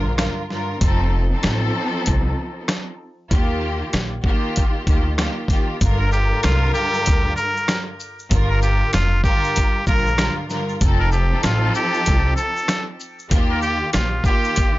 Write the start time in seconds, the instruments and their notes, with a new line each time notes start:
Already playing: upright bass A#1, string section G2 D3 F4 A#4
0.17 string section G2 D3 F4 A#4, cross-stick, snare, closed hi-hat
0.50 string section G2 D3 F4 A#4, snare
0.81 upright bass F1, string section F3 C4 D#4 A4, kick, closed hi-hat
1.31 string section F3 C4 D#4 A4
1.43 upright bass A1, cross-stick, snare, closed hi-hat
2.06 upright bass C2, kick, closed hi-hat
2.68 cross-stick, snare, closed hi-hat
3.30 upright bass D#2, string section D#3 A#3 F4 G4, kick, closed hi-hat
3.93 upright bass A#1, cross-stick, snare, closed hi-hat
4.24 string section D#3 A#3 F4 G4, kick
4.56 kick, closed hi-hat
4.86 upright bass D2, string section D#3 A#3 F4 G4, kick, closed hi-hat
5.17 string section D#3 A#3 F4 G4, cross-stick, snare, closed hi-hat
5.48 string section D#3 A#3 F4 G4, kick, snare, closed hi-hat
5.81 upright bass G1, string section G2 D3 F4 A#4, kick, closed hi-hat, shaker
5.99 muted trumpet A#4
6.12 muted trumpet G4, shaker
6.31 string section G2 D3 F4 A#4
6.43 upright bass C2, muted trumpet F4, cross-stick, snare, closed hi-hat, shaker
6.74 muted trumpet G4, shaker
6.94 shaker
7.06 upright bass D2, kick, closed hi-hat, shaker
7.36 muted trumpet A#4, shaker
7.57 shaker
7.68 cross-stick, snare, closed hi-hat, shaker
8.00 shaker
8.19 shaker
8.31 upright bass G1, string section G2 D3 F4 A#4, kick, closed hi-hat, shaker
8.49 muted trumpet A#4
8.62 muted trumpet G4, shaker
8.93 upright bass F1, muted trumpet F4, cross-stick, snare, closed hi-hat, shaker
9.24 string section G2 D3 F4 A#4, muted trumpet G4, kick, shaker
9.44 shaker
9.56 kick, closed hi-hat, shaker
9.86 upright bass A#1, string section G2 D3 F4 A#4, muted trumpet A#4, kick, shaker
10.07 shaker
10.17 string section G2 D3 F4 A#4, cross-stick, snare, closed hi-hat, shaker
10.50 string section G2 D3 F4 A#4, snare, shaker
10.69 shaker
10.81 upright bass F1, string section F3 C4 D#4 A4, kick, closed hi-hat, shaker
10.99 muted trumpet A#4
11.12 muted trumpet G4, shaker
11.31 string section F3 C4 D#4 A4
11.43 upright bass A1, muted trumpet F4, cross-stick, snare, closed hi-hat, shaker
11.75 muted trumpet G4, shaker
11.94 shaker
12.06 upright bass C2, kick, closed hi-hat, shaker
12.36 muted trumpet A4, shaker
12.57 shaker
12.68 cross-stick, snare, closed hi-hat, shaker
13.00 shaker
13.19 shaker
13.30 upright bass D#2, string section D#3 A#3 F4 G4, kick, closed hi-hat, shaker
13.50 muted trumpet A#4
13.62 muted trumpet G4, shaker
13.93 upright bass A#1, muted trumpet F4, cross-stick, snare, closed hi-hat, shaker
14.24 string section D#3 A#3 F4 G4, muted trumpet G4, kick, shaker
14.44 shaker
14.56 kick, closed hi-hat, shaker